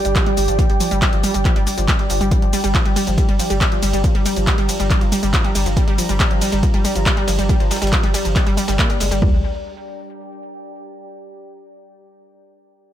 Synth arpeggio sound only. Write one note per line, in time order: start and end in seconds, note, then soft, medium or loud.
0.05 0.12 G3 medium
0.16 0.23 F3 medium
0.27 0.31 G3 loud
0.37 0.44 G3 medium
0.48 0.55 F3 medium
0.59 0.63 G3 loud
0.70 0.77 G3 medium
0.80 0.87 F3 medium
0.91 0.95 G3 loud
1.02 1.09 G3 medium
1.13 1.20 F3 medium
1.24 1.28 G3 loud
1.34 1.41 G3 medium
1.45 1.52 F3 medium
1.56 1.60 G3 loud
1.67 1.74 G3 medium
1.78 1.84 F3 medium
1.88 1.92 G3 loud
1.99 2.06 G3 medium
2.10 2.17 F3 medium
2.21 2.25 G3 loud
2.31 2.42 G3 loud
2.42 2.49 F3 medium
2.53 2.57 G3 loud
2.64 2.74 G3 loud
2.75 2.81 F3 medium
2.85 2.89 G3 loud
2.96 3.06 G3 loud
3.07 3.14 F3 medium
3.18 3.22 G3 loud
3.29 3.39 G3 loud
3.39 3.46 F3 medium
3.50 3.54 G3 loud
3.61 3.71 G3 loud
3.72 3.79 F3 medium
3.83 3.87 G3 loud
3.93 4.04 G3 loud
4.04 4.11 F3 medium
4.15 4.19 G3 loud
4.26 4.36 G3 loud
4.37 4.43 F3 medium
4.47 4.51 G3 loud
4.58 4.68 G3 loud
4.69 4.76 F3 medium
4.80 4.84 G3 loud
4.90 5.01 G3 loud
5.01 5.08 F3 medium
5.12 5.16 G3 loud
5.23 5.33 G3 loud
5.34 5.40 F3 medium
5.44 5.48 G3 loud
5.55 5.65 G3 loud
5.66 5.73 F3 medium
5.77 5.81 G3 loud
5.88 5.98 G3 loud
5.98 6.05 F3 medium
6.09 6.13 G3 loud
6.20 6.30 G3 loud
6.31 6.38 F3 medium
6.41 6.46 G3 loud
6.52 6.63 G3 loud
6.63 6.70 F3 medium
6.74 6.78 G3 loud
6.85 6.95 G3 loud
6.95 7.02 F3 medium
7.06 7.10 G3 loud
7.17 7.27 G3 loud
7.28 7.35 F3 medium
7.39 7.43 G3 loud
7.49 7.60 G3 loud
7.60 7.67 F3 medium
7.71 7.75 G3 loud
7.82 7.92 G3 loud
7.92 7.99 F3 medium
8.03 8.07 G3 loud
8.14 8.24 G3 loud
8.25 8.32 F3 medium
8.36 8.40 G3 loud
8.46 8.56 G3 loud
8.57 8.64 G3 loud
8.68 8.75 G3 loud
8.79 8.86 A#3 loud
8.90 9.00 G3 medium
9.00 9.07 G#3 medium
9.11 9.18 G3 loud
9.22 9.42 G3 loud